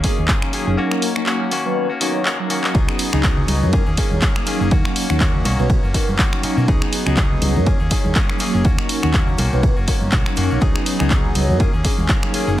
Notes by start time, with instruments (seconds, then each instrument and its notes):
0.03 clean electric guitar D#3 A#3 C#4 G#4, analog polysynth F#3 A#3 C#4 D#4 G#4, kick, open hi-hat
0.18 fingered electric bass D#2
0.28 clean electric guitar D#3 A#3 C#4 G#4, kick, clap
0.42 analog polysynth F#3 A#3 C#4 D#4 G#4, finger snap
0.52 clean electric guitar D#3 A#3 C#4 G#4, open hi-hat
0.66 fingered electric bass F#1, clean electric guitar A#3 C#4 G#4
0.77 analog polysynth F#3 A#3 C#4 D#4 A#4, clean electric guitar A#3 C#4 F#4
0.91 finger snap
1.02 open hi-hat
1.16 analog polysynth F#3 A#3 C#4 D#4 A#4, clean electric guitar C#4 F#4, finger snap
1.26 clean electric guitar A#3 C#4 F#4, clap
1.51 clean electric guitar D#3 A#3 C#4 F#4, open hi-hat
1.65 analog polysynth F#3 B3 C#4 D#4 B4
1.90 clean electric guitar A#3 C#4 F#4
2.00 clean electric guitar D#3 A#3 C#4 F#4, analog polysynth F#3 B3 C#4 D#4 A#4, open hi-hat
2.25 clean electric guitar D#3 A#3 C#4 F#4, clap
2.39 analog polysynth F#3 C#4 D#4 A#4, clean electric guitar A#3 C#4 F#4
2.49 clean electric guitar D#3 A#3 C#4 F#4, open hi-hat
2.63 clean electric guitar A#3 C#4 F#4, clap
2.74 fingered electric bass C#2, clean electric guitar F#3 B3 D#4 G#4, analog polysynth F#3 B3 C#4 D#4 G#4, kick, ride, shaker
2.88 clean electric guitar B3 D#4 G#4, finger snap
2.99 open hi-hat, ride, shaker
3.13 fingered electric bass C#2, analog polysynth F#3 B3 C#4 D#4 G#4, clean electric guitar B3 D#4 G#4, finger snap, shaker
3.23 clean electric guitar F#3 B3 D#4 G#4, kick, clap, ride, shaker
3.37 low conga
3.48 fingered electric bass C#2, open hi-hat, ride, high conga, shaker
3.62 fingered electric bass F#2, analog polysynth F#3 A#3 C#4 D#4 A#4, shaker
3.72 clean electric guitar D#3 A#3 C#4 G#4, kick, ride, shaker
3.86 fingered electric bass D#2, clean electric guitar A#3 C#4 G#4, shaker
3.97 clean electric guitar D#3 A#3 C#4 G#4, analog polysynth F#3 A#3 C#4 D#4 G#4, kick, open hi-hat, ride, shaker
4.11 fingered electric bass D#2, high conga, shaker
4.22 clean electric guitar D#3 A#3 C#4 G#4, kick, clap, ride, shaker
4.36 analog polysynth F#3 A#3 C#4 D#4 G#4, clean electric guitar A#3 C#4 G#4, finger snap
4.46 clean electric guitar D#3 A#3 C#4 G#4, open hi-hat, ride, shaker
4.60 fingered electric bass F#1, clean electric guitar A#3 C#4 G#4, shaker
4.71 fingered electric bass D#2, analog polysynth F#3 A#3 C#4 D#4 A#4, clean electric guitar A#3 C#4 F#4, kick, ride, shaker
4.85 finger snap
4.96 open hi-hat, ride, shaker
5.09 fingered electric bass D#2, analog polysynth F#3 A#3 C#4 D#4 A#4, clean electric guitar C#4 F#4, finger snap, shaker
5.20 clean electric guitar A#3 C#4 F#4, kick, clap, ride, shaker
5.35 low conga
5.45 fingered electric bass B1, clean electric guitar D#3 A#3 C#4 F#4, open hi-hat, ride, high conga, shaker
5.59 fingered electric bass B1, analog polysynth F#3 B3 C#4 D#4 B4, shaker
5.70 kick, ride, shaker
5.83 fingered electric bass F#1, clean electric guitar A#3 C#4 F#4, shaker
5.94 clean electric guitar D#3 A#3 C#4 F#4, analog polysynth F#3 B3 C#4 D#4 A#4, kick, open hi-hat, ride, shaker
6.08 fingered electric bass F#1, high conga, shaker
6.18 clean electric guitar D#3 A#3 C#4 F#4, kick, clap, ride, shaker
6.33 analog polysynth F#3 C#4 D#4 A#4, finger snap
6.43 clean electric guitar D#3 A#3 C#4 F#4, muted fingered electric bass stroke, open hi-hat, ride, shaker
6.57 fingered electric bass B2, clean electric guitar A#3 C#4 F#4, shaker
6.68 fingered electric bass C#2, clean electric guitar F#3 B3 D#4 G#4, analog polysynth F#3 B3 C#4 D#4 G#4, kick, ride, shaker
6.81 clean electric guitar B3 D#4 G#4, finger snap
6.92 open hi-hat, ride, shaker
7.06 fingered electric bass C#2, analog polysynth F#3 B3 C#4 D#4 G#4, clean electric guitar B3 D#4 G#4, finger snap, shaker
7.16 clean electric guitar F#3 B3 D#4 G#4, kick, clap, ride, shaker
7.32 low conga
7.42 fingered electric bass C#2, open hi-hat, ride, high conga, shaker
7.56 fingered electric bass F#2, analog polysynth F#3 A#3 C#4 D#4 A#4, shaker
7.66 clean electric guitar D#3 A#3 C#4 G#4, kick, ride, shaker
7.80 fingered electric bass D#2, clean electric guitar A#3 C#4 G#4, shaker
7.91 clean electric guitar D#3 A#3 C#4 G#4, analog polysynth F#3 A#3 C#4 D#4 G#4, kick, open hi-hat, ride, shaker
8.04 fingered electric bass D#2, high conga, shaker
8.15 clean electric guitar D#3 A#3 C#4 G#4, kick, clap, ride, shaker
8.29 analog polysynth F#3 A#3 C#4 D#4 G#4, clean electric guitar A#3 C#4 G#4, finger snap
8.39 clean electric guitar D#3 A#3 C#4 G#4, open hi-hat, ride, shaker
8.54 fingered electric bass F#1, clean electric guitar A#3 C#4 G#4, shaker
8.64 fingered electric bass D#2, analog polysynth F#3 A#3 C#4 D#4 A#4, clean electric guitar A#3 C#4 F#4, kick, ride, shaker
8.78 clean electric guitar C#4 F#4, finger snap
8.89 open hi-hat, ride, shaker
9.03 fingered electric bass D#2, analog polysynth F#3 A#3 C#4 D#4 A#4, clean electric guitar C#4 F#4, finger snap, shaker
9.14 clean electric guitar A#3 C#4 F#4, kick, clap, ride, shaker
9.27 low conga, shaker
9.38 fingered electric bass B1, clean electric guitar D#3 A#3 C#4 F#4, open hi-hat, ride, high conga, shaker
9.52 fingered electric bass B1, analog polysynth F#3 B3 C#4 D#4 B4, shaker
9.63 kick, ride, shaker
9.76 fingered electric bass F#1, clean electric guitar A#3 C#4 F#4, shaker
9.87 clean electric guitar D#3 A#3 C#4 F#4, analog polysynth F#3 B3 C#4 D#4 A#4, kick, open hi-hat, ride, shaker
10.01 fingered electric bass F#1, high conga, shaker
10.12 fingered electric bass B1, clean electric guitar D#3 A#3 C#4 F#4, kick, clap, ride, shaker
10.25 analog polysynth F#3 C#4 D#4 A#4, clean electric guitar A#3 C#4 F#4, finger snap, shaker
10.36 fingered electric bass F#2, clean electric guitar D#3 A#3 C#4 F#4, open hi-hat, ride, shaker
10.50 fingered electric bass B1, clean electric guitar A#3 C#4 F#4, shaker
10.61 fingered electric bass C#2, clean electric guitar F#3 B3 D#4 G#4, analog polysynth F#3 B3 C#4 D#4 G#4, kick, ride, shaker
10.75 clean electric guitar B3 D#4 G#4, finger snap
10.86 open hi-hat, ride, shaker
10.99 fingered electric bass C#2, analog polysynth F#3 B3 C#4 D#4 G#4, clean electric guitar B3 D#4 G#4, finger snap, shaker
11.10 clean electric guitar F#3 B3 D#4 G#4, kick, clap, ride, shaker
11.25 low conga
11.35 fingered electric bass C#2, open hi-hat, ride, high conga, shaker
11.49 fingered electric bass F#2, analog polysynth F#3 A#3 C#4 D#4 A#4, shaker
11.59 clean electric guitar D#3 A#3 C#4 G#4, kick, ride, shaker
11.73 fingered electric bass D#2, clean electric guitar A#3 C#4 G#4, shaker
11.84 clean electric guitar D#3 A#3 C#4 G#4, analog polysynth F#3 A#3 C#4 D#4 G#4, kick, open hi-hat, ride, shaker
11.98 fingered electric bass D#2, high conga, shaker
12.09 clean electric guitar D#3 A#3 C#4 G#4, kick, clap, ride, shaker
12.23 analog polysynth F#3 A#3 C#4 D#4 G#4, finger snap
12.33 clean electric guitar D#3 A#3 C#4 G#4, open hi-hat, ride, shaker
12.47 fingered electric bass F#1, clean electric guitar A#3 C#4 G#4, shaker